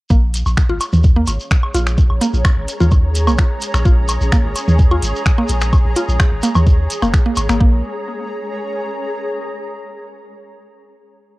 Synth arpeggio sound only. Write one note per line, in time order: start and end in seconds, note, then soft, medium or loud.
0.10 0.15 A#3 medium
0.69 0.72 F4 medium
1.16 1.21 A#3 medium
1.74 1.77 F4 medium
2.21 2.26 A#3 medium
2.80 2.83 F4 medium
3.27 3.32 A#3 medium
3.85 3.88 F4 medium
4.32 4.37 A#3 medium
4.91 4.94 F4 medium
5.38 5.43 A#3 medium
5.96 5.99 F4 medium
6.43 6.48 A#3 medium
7.02 7.07 A#3 loud
7.26 7.30 A#3 medium
7.49 7.56 A#3 medium
7.60 7.82 A#3 medium